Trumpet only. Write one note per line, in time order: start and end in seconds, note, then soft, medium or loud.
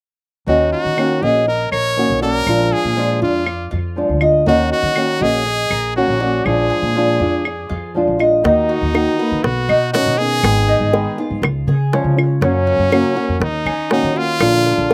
0.48 0.71 F#4 medium
0.72 1.24 F#4 medium
1.23 1.47 G#4 medium
1.48 1.71 A#4 medium
1.72 2.19 C#5 loud
2.22 2.74 A#4 medium
2.73 3.22 G#4 medium
3.23 3.69 F4 medium
4.48 4.70 F#4 medium
4.72 5.24 F#4 medium
5.22 5.95 G#4 loud
5.96 6.47 F#4 medium
6.45 7.95 G#4 medium
8.45 9.45 D#4 medium
9.43 9.93 F#4 medium
9.93 10.20 F#4 medium
10.18 11.18 G#4 loud
12.43 13.38 C#4 medium
13.43 13.89 D#4 medium
13.92 14.19 D#4 medium
14.17 14.94 F4 loud